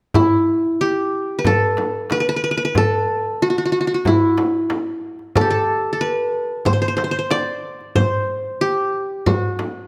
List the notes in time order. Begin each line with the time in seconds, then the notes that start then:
0.14 E4, darbuka dum, frame drum
0.47 darbuka ka
0.81 G4, darbuka ka
1.39 B4
1.45 A4, darbuka dum, frame drum
1.77 darbuka tek, frame drum
2.10 B4, darbuka tek, frame drum
2.20 B4
2.29 B4
2.36 B4
2.44 B4
2.51 B4
2.57 B4, darbuka ka
2.65 B4
2.75 A4, darbuka dum, frame drum
3.07 darbuka ka
3.41 F#4, darbuka ka
3.50 F#4
3.58 F#4
3.65 F#4
3.72 F#4
3.81 F#4
3.87 F#4
3.94 F#4
4.05 E4, darbuka dum, frame drum
4.38 darbuka tek, frame drum
4.70 darbuka tek, frame drum
5.19 darbuka ka
5.36 A4, darbuka dum, frame drum
5.41 G4
5.50 A4
5.68 darbuka ka
5.93 A4
6.00 B4, darbuka ka
6.65 C5, frame drum, darbuka dum
6.73 C5
6.82 C5
6.88 C5
6.97 C5, darbuka tek, frame drum
7.04 C5
7.11 C5
7.19 C5
7.30 D5, darbuka tek, frame drum
7.81 darbuka ka
7.95 C5, frame drum, darbuka dum
8.61 G4
9.26 F#4, frame drum, darbuka dum
9.59 darbuka tek, frame drum